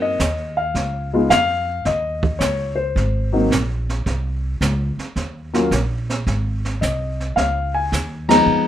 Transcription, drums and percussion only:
0, 0, Header, 1, 2, 480
1, 0, Start_track
1, 0, Tempo, 551471
1, 656, Time_signature, 4, 2, 24, 8
1, 7551, End_track
2, 0, Start_track
2, 0, Title_t, "Drums"
2, 170, Note_on_c, 9, 38, 49
2, 172, Note_on_c, 9, 44, 53
2, 173, Note_on_c, 9, 36, 17
2, 257, Note_off_c, 9, 38, 0
2, 259, Note_off_c, 9, 44, 0
2, 260, Note_off_c, 9, 36, 0
2, 653, Note_on_c, 9, 25, 40
2, 653, Note_on_c, 9, 36, 23
2, 653, Note_on_c, 9, 38, 36
2, 740, Note_off_c, 9, 38, 0
2, 741, Note_off_c, 9, 36, 0
2, 1134, Note_on_c, 9, 36, 17
2, 1134, Note_on_c, 9, 38, 49
2, 1136, Note_on_c, 9, 44, 45
2, 1221, Note_off_c, 9, 36, 0
2, 1221, Note_off_c, 9, 38, 0
2, 1223, Note_off_c, 9, 44, 0
2, 1612, Note_off_c, 9, 25, 0
2, 1612, Note_on_c, 9, 25, 45
2, 1612, Note_on_c, 9, 38, 37
2, 1614, Note_on_c, 9, 36, 20
2, 1699, Note_off_c, 9, 38, 0
2, 1701, Note_off_c, 9, 36, 0
2, 1940, Note_on_c, 9, 36, 51
2, 2027, Note_off_c, 9, 36, 0
2, 2093, Note_on_c, 9, 38, 50
2, 2094, Note_on_c, 9, 36, 19
2, 2094, Note_on_c, 9, 44, 49
2, 2180, Note_off_c, 9, 38, 0
2, 2181, Note_off_c, 9, 36, 0
2, 2181, Note_off_c, 9, 44, 0
2, 2577, Note_on_c, 9, 36, 23
2, 2585, Note_off_c, 9, 25, 0
2, 2585, Note_on_c, 9, 25, 44
2, 2585, Note_on_c, 9, 38, 37
2, 2664, Note_off_c, 9, 36, 0
2, 2672, Note_off_c, 9, 38, 0
2, 3057, Note_on_c, 9, 36, 14
2, 3061, Note_on_c, 9, 38, 49
2, 3063, Note_on_c, 9, 44, 49
2, 3144, Note_off_c, 9, 36, 0
2, 3148, Note_off_c, 9, 38, 0
2, 3150, Note_off_c, 9, 44, 0
2, 3389, Note_on_c, 9, 38, 31
2, 3476, Note_off_c, 9, 38, 0
2, 3535, Note_off_c, 9, 25, 0
2, 3535, Note_on_c, 9, 25, 37
2, 3535, Note_on_c, 9, 36, 22
2, 3535, Note_on_c, 9, 38, 34
2, 3622, Note_off_c, 9, 36, 0
2, 3623, Note_off_c, 9, 38, 0
2, 4014, Note_on_c, 9, 36, 18
2, 4016, Note_on_c, 9, 38, 49
2, 4018, Note_on_c, 9, 44, 57
2, 4101, Note_off_c, 9, 36, 0
2, 4103, Note_off_c, 9, 38, 0
2, 4105, Note_off_c, 9, 44, 0
2, 4343, Note_on_c, 9, 38, 31
2, 4430, Note_off_c, 9, 38, 0
2, 4493, Note_off_c, 9, 25, 0
2, 4493, Note_on_c, 9, 25, 38
2, 4493, Note_on_c, 9, 38, 37
2, 4494, Note_on_c, 9, 36, 17
2, 4580, Note_off_c, 9, 38, 0
2, 4581, Note_off_c, 9, 36, 0
2, 4824, Note_on_c, 9, 38, 37
2, 4911, Note_off_c, 9, 38, 0
2, 4974, Note_on_c, 9, 36, 21
2, 4975, Note_on_c, 9, 38, 44
2, 4977, Note_on_c, 9, 44, 45
2, 5061, Note_off_c, 9, 36, 0
2, 5062, Note_off_c, 9, 38, 0
2, 5064, Note_off_c, 9, 44, 0
2, 5306, Note_on_c, 9, 38, 32
2, 5393, Note_off_c, 9, 38, 0
2, 5455, Note_on_c, 9, 36, 18
2, 5456, Note_off_c, 9, 25, 0
2, 5456, Note_on_c, 9, 25, 37
2, 5456, Note_on_c, 9, 38, 35
2, 5543, Note_off_c, 9, 36, 0
2, 5543, Note_off_c, 9, 38, 0
2, 5787, Note_on_c, 9, 38, 29
2, 5874, Note_off_c, 9, 38, 0
2, 5937, Note_on_c, 9, 36, 22
2, 5940, Note_on_c, 9, 38, 49
2, 5942, Note_on_c, 9, 44, 47
2, 6024, Note_off_c, 9, 36, 0
2, 6027, Note_off_c, 9, 38, 0
2, 6029, Note_off_c, 9, 44, 0
2, 6270, Note_on_c, 9, 38, 28
2, 6357, Note_off_c, 9, 38, 0
2, 6416, Note_on_c, 9, 36, 21
2, 6417, Note_off_c, 9, 25, 0
2, 6417, Note_on_c, 9, 25, 39
2, 6417, Note_on_c, 9, 38, 37
2, 6503, Note_off_c, 9, 36, 0
2, 6504, Note_off_c, 9, 38, 0
2, 6898, Note_on_c, 9, 36, 21
2, 6900, Note_on_c, 9, 38, 49
2, 6902, Note_on_c, 9, 44, 49
2, 6985, Note_off_c, 9, 36, 0
2, 6987, Note_off_c, 9, 38, 0
2, 6989, Note_off_c, 9, 44, 0
2, 7226, Note_on_c, 9, 38, 62
2, 7228, Note_on_c, 9, 51, 55
2, 7313, Note_off_c, 9, 38, 0
2, 7315, Note_off_c, 9, 51, 0
2, 7387, Note_off_c, 9, 25, 0
2, 7387, Note_on_c, 9, 25, 45
2, 7551, Note_off_c, 9, 25, 0
2, 7551, End_track
0, 0, End_of_file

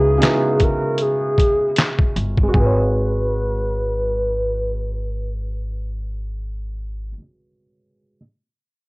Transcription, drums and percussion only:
0, 0, Header, 1, 2, 480
1, 0, Start_track
1, 0, Key_signature, 5, "minor"
1, 0, Tempo, 779221
1, 1567, Time_signature, 4, 2, 24, 8
1, 5472, End_track
2, 0, Start_track
2, 0, Title_t, "Drums"
2, 135, Note_on_c, 9, 42, 72
2, 143, Note_on_c, 9, 38, 96
2, 147, Note_on_c, 9, 39, 81
2, 196, Note_off_c, 9, 42, 0
2, 205, Note_off_c, 9, 38, 0
2, 209, Note_off_c, 9, 39, 0
2, 369, Note_on_c, 9, 42, 58
2, 373, Note_on_c, 9, 36, 74
2, 430, Note_off_c, 9, 42, 0
2, 434, Note_off_c, 9, 36, 0
2, 604, Note_on_c, 9, 42, 67
2, 666, Note_off_c, 9, 42, 0
2, 850, Note_on_c, 9, 36, 83
2, 860, Note_on_c, 9, 42, 53
2, 912, Note_off_c, 9, 36, 0
2, 922, Note_off_c, 9, 42, 0
2, 1086, Note_on_c, 9, 42, 70
2, 1100, Note_on_c, 9, 38, 103
2, 1104, Note_on_c, 9, 39, 87
2, 1148, Note_off_c, 9, 42, 0
2, 1161, Note_off_c, 9, 38, 0
2, 1165, Note_off_c, 9, 39, 0
2, 1224, Note_on_c, 9, 36, 80
2, 1286, Note_off_c, 9, 36, 0
2, 1333, Note_on_c, 9, 42, 58
2, 1395, Note_off_c, 9, 42, 0
2, 1464, Note_on_c, 9, 36, 74
2, 1525, Note_off_c, 9, 36, 0
2, 1566, Note_on_c, 9, 36, 83
2, 1627, Note_off_c, 9, 36, 0
2, 5472, End_track
0, 0, End_of_file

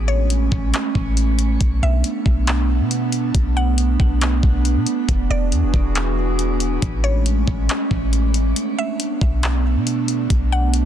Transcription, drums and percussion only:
0, 0, Header, 1, 2, 480
1, 0, Start_track
1, 0, Tempo, 434783
1, 1772, Time_signature, 4, 2, 24, 8
1, 11979, End_track
2, 0, Start_track
2, 0, Title_t, "Drums"
2, 333, Note_on_c, 9, 42, 61
2, 444, Note_off_c, 9, 42, 0
2, 573, Note_on_c, 9, 36, 96
2, 683, Note_off_c, 9, 36, 0
2, 813, Note_on_c, 9, 42, 78
2, 824, Note_on_c, 9, 39, 114
2, 923, Note_off_c, 9, 42, 0
2, 935, Note_off_c, 9, 39, 0
2, 1051, Note_on_c, 9, 36, 89
2, 1162, Note_off_c, 9, 36, 0
2, 1292, Note_on_c, 9, 42, 72
2, 1403, Note_off_c, 9, 42, 0
2, 1530, Note_on_c, 9, 42, 67
2, 1641, Note_off_c, 9, 42, 0
2, 1773, Note_on_c, 9, 36, 103
2, 1773, Note_on_c, 9, 42, 81
2, 1883, Note_off_c, 9, 36, 0
2, 1883, Note_off_c, 9, 42, 0
2, 2253, Note_on_c, 9, 42, 61
2, 2364, Note_off_c, 9, 42, 0
2, 2492, Note_on_c, 9, 36, 92
2, 2603, Note_off_c, 9, 36, 0
2, 2731, Note_on_c, 9, 42, 81
2, 2743, Note_on_c, 9, 39, 116
2, 2841, Note_off_c, 9, 42, 0
2, 2853, Note_off_c, 9, 39, 0
2, 3212, Note_on_c, 9, 42, 73
2, 3323, Note_off_c, 9, 42, 0
2, 3449, Note_on_c, 9, 42, 64
2, 3560, Note_off_c, 9, 42, 0
2, 3694, Note_on_c, 9, 36, 107
2, 3694, Note_on_c, 9, 42, 81
2, 3804, Note_off_c, 9, 36, 0
2, 3805, Note_off_c, 9, 42, 0
2, 4172, Note_on_c, 9, 42, 61
2, 4283, Note_off_c, 9, 42, 0
2, 4413, Note_on_c, 9, 36, 97
2, 4523, Note_off_c, 9, 36, 0
2, 4653, Note_on_c, 9, 42, 78
2, 4664, Note_on_c, 9, 39, 114
2, 4763, Note_off_c, 9, 42, 0
2, 4775, Note_off_c, 9, 39, 0
2, 4892, Note_on_c, 9, 36, 91
2, 5003, Note_off_c, 9, 36, 0
2, 5134, Note_on_c, 9, 42, 69
2, 5245, Note_off_c, 9, 42, 0
2, 5371, Note_on_c, 9, 42, 66
2, 5482, Note_off_c, 9, 42, 0
2, 5615, Note_on_c, 9, 36, 105
2, 5615, Note_on_c, 9, 42, 79
2, 5725, Note_off_c, 9, 36, 0
2, 5726, Note_off_c, 9, 42, 0
2, 6096, Note_on_c, 9, 42, 59
2, 6206, Note_off_c, 9, 42, 0
2, 6334, Note_on_c, 9, 36, 96
2, 6444, Note_off_c, 9, 36, 0
2, 6573, Note_on_c, 9, 42, 76
2, 6585, Note_on_c, 9, 39, 114
2, 6684, Note_off_c, 9, 42, 0
2, 6695, Note_off_c, 9, 39, 0
2, 7054, Note_on_c, 9, 42, 71
2, 7164, Note_off_c, 9, 42, 0
2, 7290, Note_on_c, 9, 42, 66
2, 7400, Note_off_c, 9, 42, 0
2, 7533, Note_on_c, 9, 36, 105
2, 7533, Note_on_c, 9, 42, 81
2, 7643, Note_off_c, 9, 36, 0
2, 7643, Note_off_c, 9, 42, 0
2, 8014, Note_on_c, 9, 42, 59
2, 8124, Note_off_c, 9, 42, 0
2, 8253, Note_on_c, 9, 36, 96
2, 8363, Note_off_c, 9, 36, 0
2, 8492, Note_on_c, 9, 42, 78
2, 8504, Note_on_c, 9, 39, 116
2, 8603, Note_off_c, 9, 42, 0
2, 8614, Note_off_c, 9, 39, 0
2, 8732, Note_on_c, 9, 36, 88
2, 8842, Note_off_c, 9, 36, 0
2, 8974, Note_on_c, 9, 42, 72
2, 9085, Note_off_c, 9, 42, 0
2, 9211, Note_on_c, 9, 42, 64
2, 9321, Note_off_c, 9, 42, 0
2, 9454, Note_on_c, 9, 42, 82
2, 9564, Note_off_c, 9, 42, 0
2, 9933, Note_on_c, 9, 42, 58
2, 10043, Note_off_c, 9, 42, 0
2, 10173, Note_on_c, 9, 36, 93
2, 10283, Note_off_c, 9, 36, 0
2, 10412, Note_on_c, 9, 42, 76
2, 10424, Note_on_c, 9, 39, 114
2, 10522, Note_off_c, 9, 42, 0
2, 10534, Note_off_c, 9, 39, 0
2, 10894, Note_on_c, 9, 42, 72
2, 11004, Note_off_c, 9, 42, 0
2, 11131, Note_on_c, 9, 42, 67
2, 11241, Note_off_c, 9, 42, 0
2, 11374, Note_on_c, 9, 36, 103
2, 11374, Note_on_c, 9, 42, 79
2, 11484, Note_off_c, 9, 36, 0
2, 11484, Note_off_c, 9, 42, 0
2, 11852, Note_on_c, 9, 42, 60
2, 11962, Note_off_c, 9, 42, 0
2, 11979, End_track
0, 0, End_of_file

